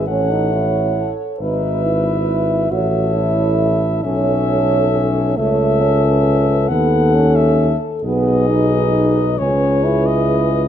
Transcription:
0.08 1.13 A1 soft
0.08 0.32 C#4 medium
0.08 1.37 A4 soft
0.08 1.40 C#5 soft
0.08 1.11 F#5 soft
0.31 0.54 D#4 medium
0.53 1.14 E4 medium
1.39 2.67 G#1 soft
1.39 1.86 D#4 medium
1.39 2.71 B4 soft
1.39 2.54 B4 soft
1.39 2.67 E5 soft
1.85 2.73 E4 medium
2.70 4.02 A1 soft
2.70 3.15 F#4 medium
2.70 4.02 A4 soft
2.70 3.87 C#5 soft
2.70 4.02 E5 soft
3.15 4.06 E4 medium
4.03 5.35 B1 soft
4.03 4.92 C#4 medium
4.03 5.35 A4 soft
4.03 5.34 C#5 medium
4.03 5.34 E5 medium
4.92 5.39 C#4 medium
5.37 6.68 C#2 medium
5.37 5.83 A3 medium
5.37 6.68 A4 medium
5.37 6.03 C#5 soft
5.37 6.70 E5 soft
5.81 6.71 C#4 medium
6.04 6.70 B4 soft
6.68 7.75 D#2 medium
6.68 7.16 B3 medium
6.68 8.01 A4 medium
6.68 8.02 A4 medium
6.68 7.37 F#5 soft
7.15 7.77 C#4 medium
7.36 7.80 E5 soft
8.03 9.36 B1 medium
8.03 8.51 B3 medium
8.03 9.24 G#4 medium
8.03 9.39 B4 medium
8.03 9.40 D#5 soft
8.50 9.39 D#4 medium
9.39 10.68 C#2 soft
9.39 9.86 C#4 medium
9.39 10.68 G#4 medium
9.39 10.68 B4 medium
9.39 10.08 C#5 medium
9.84 10.68 E4 medium
10.06 10.68 D#5 soft

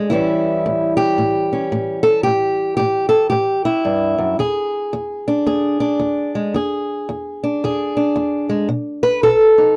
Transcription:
0.10 0.61 A2 medium
0.10 3.62 E3 soft
0.10 4.41 G3 soft
0.10 1.51 C#4 soft
0.10 0.96 E4 medium
0.66 1.15 A2 medium
0.97 2.03 G4 medium
1.18 1.68 A2 medium
1.53 2.24 C#4 soft
1.72 2.22 A2 medium
2.03 2.23 A4 loud
2.23 2.76 A2 medium
2.23 2.76 G4 medium
2.77 3.29 A2 medium
2.77 3.08 G4 medium
3.09 3.29 A4 medium
3.30 3.82 A2 medium
3.30 3.65 G4 medium
3.65 4.39 E4 medium
3.85 4.18 G2 medium
4.18 4.39 F#2 medium
4.39 4.89 E2 medium
4.39 5.46 G#4 medium
4.93 5.43 E2 medium
5.28 5.79 D4 medium
5.46 5.97 E2 medium
5.46 6.52 G#4 medium
5.80 6.52 D4 medium
5.99 6.50 E2 medium
6.35 6.53 G#3 medium
6.54 7.04 E2 medium
6.54 7.63 G#4 medium
7.09 7.58 E2 medium
7.43 7.95 D4 medium
7.64 8.13 E2 medium
7.64 8.68 G#4 medium
7.97 8.68 D4 medium
8.16 8.65 E2 medium
8.49 8.67 G#3 medium
8.69 9.19 B2 medium
9.03 9.23 B4 loud
9.23 9.73 B2 medium
9.23 9.77 A4 loud
9.58 9.77 D#4 soft

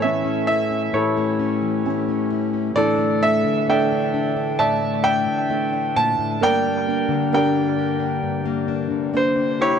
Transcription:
0.00 0.93 A2 medium
0.00 6.37 A2 medium
0.00 1.60 E3 medium
0.00 2.75 E3 medium
0.00 6.37 E3 medium
0.00 1.15 A3 medium
0.00 2.85 A3 medium
0.00 0.23 C#4 medium
0.00 2.73 C#4 medium
0.00 1.85 C#4 medium
0.00 0.44 E4 medium
0.00 0.44 A4 medium
0.00 0.91 A4 medium
0.00 2.86 A4 medium
0.00 0.46 E5 medium
0.24 0.70 C#4 medium
0.47 2.31 E4 medium
0.47 0.94 E5 medium
0.71 1.38 C#4 medium
0.93 2.74 A2 medium
0.93 2.73 E4 soft
0.93 2.75 G4 medium
0.93 2.73 A4 soft
0.93 2.27 C#5 medium
1.17 1.84 A3 medium
1.39 2.07 C#4 medium
1.62 2.70 E3 medium
1.86 2.71 A3 medium
1.86 2.86 C#4 medium
2.09 2.52 C#4 medium
2.32 2.72 E4 medium
2.53 2.71 C#4 soft
2.75 3.44 A2 medium
2.75 3.43 D3 medium
2.75 6.41 E3 medium
2.75 2.97 A3 medium
2.75 3.21 D4 medium
2.75 8.19 D4 medium
2.75 4.55 A4 medium
2.75 6.38 A4 medium
2.75 3.23 D5 medium
2.98 3.67 A3 medium
3.21 3.66 A3 medium
3.21 3.92 D4 medium
3.21 3.65 E5 medium
3.44 5.25 D3 medium
3.68 4.81 A3 medium
3.68 6.41 A3 medium
3.68 5.49 D4 medium
3.68 6.51 A4 medium
3.68 4.58 D5 medium
3.68 4.58 E5 medium
3.68 4.56 G5 medium
3.92 4.13 D4 medium
4.14 4.36 D4 medium
4.36 5.03 D4 medium
4.59 5.27 A2 medium
4.59 5.03 D5 medium
4.59 5.02 E5 medium
4.59 5.05 A5 medium
4.82 5.49 A3 medium
5.04 5.72 D4 medium
5.04 6.37 D5 medium
5.04 6.37 E5 medium
5.04 5.98 G5 loud
5.26 7.07 D3 medium
5.50 6.35 A3 medium
5.50 6.50 D4 medium
5.73 6.87 D4 medium
5.96 6.18 A#2 medium
5.96 6.43 A5 medium
6.19 6.41 A2 medium
6.40 9.79 G2 medium
6.40 8.21 G2 medium
6.40 9.79 G3 medium
6.40 6.85 A#3 medium
6.40 9.79 A#4 medium
6.40 7.32 A#4 medium
6.40 7.33 D5 medium
6.40 7.33 G5 loud
6.65 7.32 A#3 medium
6.87 7.31 A#3 medium
6.87 7.54 D4 medium
7.09 8.90 D3 medium
7.33 9.79 A#3 medium
7.33 8.44 A#3 medium
7.33 9.13 D4 medium
7.33 9.79 G4 medium
7.33 9.10 A#4 medium
7.33 9.10 D5 medium
7.33 9.10 G5 medium
7.55 7.98 D4 soft
7.79 9.58 G4 medium
8.00 8.67 D4 medium
8.21 9.79 G2 medium
8.21 9.79 C3 medium
8.46 9.12 A#3 medium
8.68 9.35 D4 medium
8.91 9.79 D3 medium
9.14 9.79 A#3 medium
9.14 9.79 D4 medium
9.14 9.61 C5 medium
9.36 9.79 D4 medium
9.60 9.79 E4 medium
9.60 9.79 G4 medium
9.60 9.79 C#5 medium

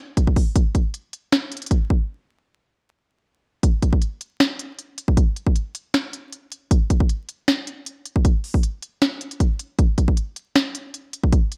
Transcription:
0.17 kick loud
0.17 closed hi-hat medium
0.27 kick medium
0.36 kick loud
0.36 open hi-hat medium
0.56 kick loud
0.56 closed hi-hat medium
0.75 kick medium
0.75 closed hi-hat medium
0.94 closed hi-hat medium
1.13 closed hi-hat medium
1.32 finger snap medium
1.32 snare loud
1.32 closed hi-hat medium
1.52 closed hi-hat medium
1.57 closed hi-hat medium
1.62 closed hi-hat medium
1.66 closed hi-hat medium
1.71 kick loud
1.71 closed hi-hat medium
1.90 kick loud
3.63 kick loud
3.63 closed hi-hat medium
3.82 kick medium
3.82 closed hi-hat medium
3.93 kick loud
4.02 closed hi-hat medium
4.21 closed hi-hat medium
4.40 finger snap medium
4.40 snare loud
4.40 closed hi-hat medium
4.59 closed hi-hat medium
4.79 closed hi-hat medium
4.98 closed hi-hat medium
5.08 kick loud
5.17 kick loud
5.17 closed hi-hat medium
5.36 closed hi-hat medium
5.47 kick loud
5.56 closed hi-hat medium
5.75 closed hi-hat medium
5.94 finger snap medium
5.94 snare loud
5.94 closed hi-hat medium
6.13 closed hi-hat medium
6.33 closed hi-hat medium
6.52 closed hi-hat medium
6.71 kick loud
6.71 closed hi-hat medium
6.90 kick loud
6.90 closed hi-hat medium
7.00 kick loud
7.09 closed hi-hat medium
7.29 closed hi-hat medium
7.48 finger snap medium
7.48 snare loud
7.48 closed hi-hat medium
7.67 closed hi-hat medium
7.86 closed hi-hat medium
8.06 closed hi-hat medium
8.16 kick loud
8.25 kick loud
8.25 closed hi-hat medium
8.44 open hi-hat medium
8.54 kick loud
8.63 closed hi-hat medium
8.82 closed hi-hat medium
9.02 finger snap medium
9.02 snare loud
9.02 closed hi-hat medium
9.21 closed hi-hat medium
9.31 closed hi-hat medium
9.40 kick loud
9.40 closed hi-hat medium
9.59 closed hi-hat medium
9.79 kick loud
9.79 closed hi-hat medium
9.98 kick loud
9.98 closed hi-hat medium
10.08 kick loud
10.17 closed hi-hat medium
10.36 closed hi-hat medium
10.56 finger snap medium
10.56 snare loud
10.56 closed hi-hat medium
10.75 closed hi-hat medium
10.94 closed hi-hat medium
11.13 closed hi-hat medium
11.23 kick loud
11.32 kick loud
11.32 closed hi-hat medium
11.52 closed hi-hat medium

